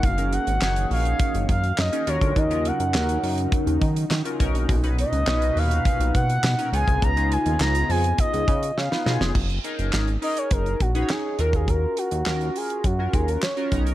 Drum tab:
CC |----------------|----------------|----------------|----------------|
HH |xxxx-xoxxxxx-xxx|xxxx-xoxxxxx-xxx|xxxx-xoxxxxx-xxx|xxxx-xoxxxxx----|
CP |----x-------x---|----x-------x---|----x-------x---|----x-----------|
SD |----o-------o---|----o-------o---|----o-------o---|----o-------oooo|
BD |o-------o-o----o|o-------o-o---o-|o-------o-o----o|o-------o-o-----|

CC |x---------------|----------------|
HH |-xxx-xoxxxxx--xx|x-xx-xoxx-xx-xxx|
CP |----x-------x---|----x-------x---|
SD |----o-------o---|----o-------o---|
BD |o-------o-o----o|o-------o-o---o-|